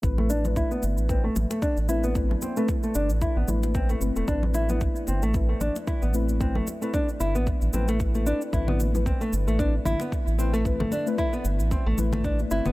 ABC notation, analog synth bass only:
X:1
M:4/4
L:1/16
Q:"Swing 16ths" 1/4=113
K:Am
V:1 name="Analog synth bass" clef=bass
A,,,4 z2 G,,, A,,,2 z A,,, z2 A,,,3- | A,,, z4 z G,,, A,,, z A,,, A,,,3 z G,,, E,,, | A,,,4 z2 G,,, A,,,2 z A,,, z2 A,,,3- | A,,, z4 z G,,, A,,, z A,,, A,,,4 z2 |
A,,,4 z2 G,,, A,,,2 z A,,, z2 A,,,3- | A,,, z4 z G,,, A,,, z A,,, A,,,3 z G,,, E,,, |]